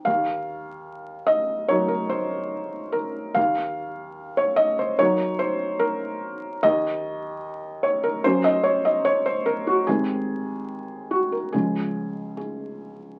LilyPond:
<<
  \new Staff \with { instrumentName = "Felt piano" } { \time 4/4 \key ees \dorian \tempo 4 = 73 f''4. ees''8 des''16 bes'16 c''4 bes'8 | f''4~ f''16 des''16 ees''16 c''16 des''8 c''8 bes'4 | ees''4. des''16 bes'16 c''16 ees''16 des''16 ees''16 des''16 c''16 bes'16 ges'16 | aes'4. ges'16 bes'16 aes'4 aes'4 | }
  \new Staff \with { instrumentName = "Felt piano" } { \clef bass \time 4/4 \key ees \dorian ees,2 <ges bes ees'>2 | ees,2 <ges bes ees'>2 | ees,2 <ges bes des'>2 | <ees, ees aes c'>2 <des, f aes des'>2 | }
>>